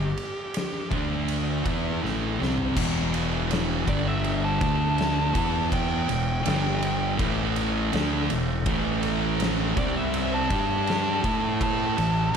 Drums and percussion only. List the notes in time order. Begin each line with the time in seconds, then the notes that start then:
0.17 ride
0.54 snare, ride
0.91 kick, ride
1.28 ride
1.66 kick, ride
2.05 snare
2.42 snare
2.58 floor tom
2.77 kick, crash
3.14 ride
3.51 snare, ride
3.88 kick, ride
4.24 ride
4.61 kick, ride
4.98 snare, ride
5.35 kick, ride
5.72 kick, ride
6.09 ride
6.46 snare, ride
6.83 ride
7.19 kick, ride
7.56 ride
7.93 snare, ride
8.30 ride
8.66 kick, ride
9.03 ride
9.40 snare, ride
9.77 kick, ride
10.14 ride
10.50 kick, ride
10.87 snare, ride
11.24 kick, ride
11.61 kick, ride
11.98 ride